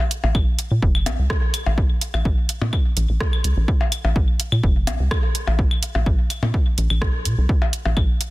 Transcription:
0.11 closed hi-hat
0.24 analog synth bass A#1, percussion blips
0.35 analog synth bass A#1, kick, claves
0.59 closed hi-hat
0.71 analog synth bass A#2
0.82 analog synth bass F1, kick
0.95 claves
1.06 analog synth bass A#1, closed hi-hat, percussion blips
1.19 analog synth bass C#2
1.30 kick, cross-stick
1.54 closed hi-hat, claves
1.66 analog synth bass A#1, percussion blips
1.78 kick
2.01 closed hi-hat
2.14 analog synth bass A#1, claves, percussion blips
2.25 analog synth bass A#1, kick
2.49 closed hi-hat
2.62 analog synth bass A#2, percussion blips
2.73 kick, claves
2.97 analog synth bass A#1, closed hi-hat
3.09 analog synth bass A#1
3.21 kick, cross-stick
3.33 claves
3.44 analog synth bass C#2, closed hi-hat
3.57 analog synth bass A#1
3.68 kick
3.81 percussion blips
3.92 closed hi-hat, claves
4.04 analog synth bass A#1, percussion blips
4.16 analog synth bass A#1, kick
4.40 closed hi-hat
4.52 analog synth bass A#2, claves
4.63 analog synth bass F1, kick
4.87 analog synth bass A#1, closed hi-hat, percussion blips
5.00 analog synth bass C#2
5.11 kick, cross-stick, claves
5.35 closed hi-hat
5.47 analog synth bass A#1, percussion blips
5.59 kick
5.71 claves
5.83 closed hi-hat
5.95 analog synth bass A#1, percussion blips
6.06 analog synth bass A#1, kick
6.30 closed hi-hat, claves
6.43 analog synth bass A#2, percussion blips
6.54 kick
6.78 analog synth bass A#1, closed hi-hat
6.90 analog synth bass A#1, claves
7.02 kick, cross-stick
7.25 analog synth bass A#2, closed hi-hat
7.38 analog synth bass C2
7.49 kick
7.62 percussion blips
7.73 closed hi-hat
7.86 analog synth bass A#1, percussion blips
7.97 analog synth bass A#1, kick, claves
8.21 closed hi-hat

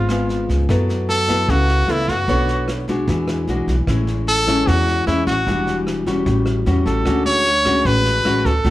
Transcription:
Already playing: upright bass G#1, nylon-string guitar G#2, trumpet F4
0.09 nylon-string guitar G#3 B3 F4, cross-stick, snare
0.29 snare
0.49 upright bass C#2, kick, snare
0.69 upright bass F#2, nylon-string guitar F#3 B3 E4 A4, kick, cross-stick, snare
0.89 snare
1.09 trumpet A4, snare
1.29 nylon-string guitar B3 E4 A4, kick, cross-stick, snare
1.48 upright bass C#2, nylon-string guitar C#3, trumpet F#4, kick, snare
1.68 snare
1.88 upright bass C#2, nylon-string guitar B3 E4 A4, trumpet E4, cross-stick, snare
2.08 upright bass F#2, trumpet F#4, kick, snare
2.28 upright bass B1, nylon-string guitar B3 D4 A4 C#5, kick, snare
2.48 snare
2.68 cross-stick, snare
2.88 nylon-string guitar G#3 D4 F#4, kick, snare
3.08 upright bass E2, nylon-string guitar E3, kick, snare
3.28 cross-stick, snare
3.47 upright bass B1, nylon-string guitar G#3 D4 F#4, snare
3.67 upright bass B1, kick, snare
3.87 upright bass A1, nylon-string guitar A2 G#3 C#4 E4, kick, cross-stick, snare
4.07 snare
4.27 trumpet A4, snare
4.47 nylon-string guitar G#3 C#4 E4, kick, cross-stick, snare
4.67 upright bass E2, nylon-string guitar E3, trumpet F#4, kick, snare
4.87 snare
5.07 upright bass E2, nylon-string guitar G#3 C#4 E4, trumpet E4, cross-stick, snare
5.27 upright bass A1, trumpet F#4, kick, snare
5.47 upright bass E1, nylon-string guitar E3 G3 D4 F#4, kick, snare
5.67 snare
5.87 cross-stick, snare
6.06 nylon-string guitar G3 C#4 F#4, kick, snare
6.26 upright bass A1, nylon-string guitar A2, kick, snare
6.46 cross-stick, snare
6.66 upright bass E2, nylon-string guitar G3 C#4 F#4, snare
6.86 upright bass A1, trumpet A4, kick, snare
7.05 upright bass D2, nylon-string guitar D3 G#3 C#4 F#4, kick, cross-stick, snare
7.26 trumpet C#5, snare
7.45 snare
7.65 nylon-string guitar G#3 C#4 F#4, kick, cross-stick, snare
7.85 upright bass A1, nylon-string guitar A2, trumpet B4, kick, snare
8.05 snare
8.25 upright bass A1, nylon-string guitar G#3 C#4 F#4, cross-stick, snare
8.45 upright bass D2, trumpet A4, kick, snare
8.65 upright bass D#2, nylon-string guitar D#3 A3 C#4 F#4, kick, snare

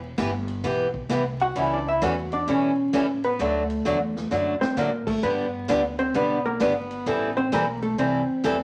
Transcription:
Already playing: upright bass E1
0.18 upright bass G1, steel-string acoustic guitar E3 B3 E4 G4, kick, snare, hi-hat pedal, ride
0.48 ride
0.64 upright bass B1, steel-string acoustic guitar E3 B3 E4 G4, kick, snare, ride
0.94 kick
1.09 upright bass C2, steel-string acoustic guitar E3 B3 E4 G4, kick, snare, hi-hat pedal, ride
1.40 hollow-body jazz guitar F#4 F#5, ride
1.55 upright bass C#2, steel-string acoustic guitar E3 G3 C#4 E4 A4, hollow-body jazz guitar E4 E5, kick, ride
1.73 hollow-body jazz guitar D4 D5
1.88 hollow-body jazz guitar E4 E5
2.02 upright bass E2, steel-string acoustic guitar E3 G3 C#4 E4 A4, hollow-body jazz guitar F#4 F#5, kick, snare, hi-hat pedal, ride
2.32 hollow-body jazz guitar D4 D5, ride
2.47 upright bass B2, steel-string acoustic guitar E3 G3 C#4 E4 A4, hollow-body jazz guitar C#4 C#5, kick, ride
2.93 upright bass A2, steel-string acoustic guitar E3 G3 C#4 E4 A4, kick, snare, hi-hat pedal, ride
3.24 hollow-body jazz guitar B3 B4, ride
3.39 upright bass D2, steel-string acoustic guitar D3 F#3 A3 D4 F#4, hollow-body jazz guitar A3 A4, kick, ride
3.70 ride
3.85 upright bass E2, steel-string acoustic guitar D3 F#3 A3 D4 F#4, snare, hi-hat pedal
4.16 snare
4.31 upright bass F#2, steel-string acoustic guitar D3 F#3 A3 D4 F#4, snare
4.61 hollow-body jazz guitar C4 C5, muted upright bass stroke, snare
4.76 upright bass A2, steel-string acoustic guitar D3 F#3 A3 D4 F#4, hollow-body jazz guitar A#3 A#4, snare, hi-hat pedal
5.07 hollow-body jazz guitar A3 A4, muted upright bass stroke, kick, crash
5.23 upright bass G2, steel-string acoustic guitar D3 G3 B3 D4 G4, hollow-body jazz guitar B3 B4, kick
5.68 upright bass D2, steel-string acoustic guitar D3 G3 B3 D4 G4, kick, snare, hi-hat pedal, ride
5.99 hollow-body jazz guitar C4 C5, ride
6.14 upright bass B1, steel-string acoustic guitar D3 G3 B3 D4 G4, hollow-body jazz guitar B3 B4, kick, ride
6.46 hollow-body jazz guitar A#3 A#4
6.60 upright bass G1, steel-string acoustic guitar D3 G3 B3 D4 G4, hollow-body jazz guitar B3 B4, kick, snare, hi-hat pedal, ride
6.91 ride
7.06 upright bass A1, steel-string acoustic guitar E3 G3 C4 E4 A4, kick, ride
7.37 hollow-body jazz guitar C4 C5
7.52 upright bass B1, steel-string acoustic guitar E3 G3 C4 E4 A4, hollow-body jazz guitar A#3 A#4, kick, snare, hi-hat pedal, ride
7.82 hollow-body jazz guitar A3 A4, ride
7.98 upright bass C2, steel-string acoustic guitar E3 G3 C4 E4 A4, hollow-body jazz guitar C4 C5, kick, ride
8.44 upright bass E2, steel-string acoustic guitar E3 G3 C4 E4 A4, kick, snare, hi-hat pedal, ride

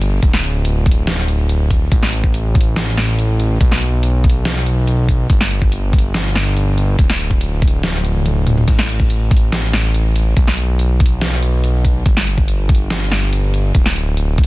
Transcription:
Already playing: analog synth bass G1
0.01 closed hi-hat
0.23 analog synth bass D1, kick, closed hi-hat
0.33 snare
0.44 closed hi-hat
0.65 closed hi-hat
0.86 kick, closed hi-hat
0.91 closed hi-hat
1.07 snare, closed hi-hat
1.28 closed hi-hat
1.49 closed hi-hat
1.71 kick, closed hi-hat
1.92 analog synth bass A1, kick, closed hi-hat
2.03 snare
2.13 closed hi-hat
2.24 kick
2.34 closed hi-hat
2.55 kick, closed hi-hat
2.61 closed hi-hat
2.76 snare, closed hi-hat
2.97 snare, closed hi-hat
3.19 closed hi-hat
3.40 closed hi-hat
3.61 analog synth bass B1, kick, closed hi-hat
3.72 snare
3.82 closed hi-hat
4.03 closed hi-hat
4.24 kick, closed hi-hat
4.30 closed hi-hat
4.45 snare, closed hi-hat
4.66 closed hi-hat
4.87 closed hi-hat
5.09 kick, closed hi-hat
5.30 analog synth bass G1, kick, closed hi-hat
5.41 snare
5.51 closed hi-hat
5.62 kick
5.72 closed hi-hat
5.93 kick, closed hi-hat
5.99 closed hi-hat
6.14 snare, closed hi-hat
6.36 snare, closed hi-hat
6.57 closed hi-hat
6.78 closed hi-hat
6.99 analog synth bass D1, kick, closed hi-hat
7.10 snare
7.20 closed hi-hat
7.31 kick
7.41 closed hi-hat
7.62 kick, closed hi-hat
7.68 closed hi-hat
7.83 snare, closed hi-hat, high tom
7.94 high tom
8.05 closed hi-hat
8.15 mid tom
8.26 closed hi-hat, mid tom
8.47 closed hi-hat, mid tom
8.58 mid tom
8.68 analog synth bass A1, kick, closed hi-hat, crash
8.79 snare
8.89 closed hi-hat
9.00 kick
9.10 closed hi-hat
9.31 kick, closed hi-hat
9.37 closed hi-hat
9.52 snare, closed hi-hat
9.73 snare, closed hi-hat
9.95 closed hi-hat
10.16 closed hi-hat
10.37 analog synth bass B1, kick, closed hi-hat
10.48 snare
10.58 closed hi-hat
10.79 closed hi-hat
11.00 kick, closed hi-hat
11.06 closed hi-hat
11.21 snare, closed hi-hat
11.43 closed hi-hat
11.64 closed hi-hat
11.85 kick, closed hi-hat
12.06 analog synth bass G1, kick, closed hi-hat
12.17 snare
12.27 closed hi-hat
12.38 kick
12.48 closed hi-hat
12.69 kick, closed hi-hat
12.75 closed hi-hat
12.90 snare, closed hi-hat
13.12 snare, closed hi-hat
13.33 closed hi-hat
13.54 closed hi-hat
13.75 analog synth bass D1, kick, closed hi-hat
13.86 snare
13.96 closed hi-hat
14.17 closed hi-hat
14.38 kick, closed hi-hat
14.44 closed hi-hat

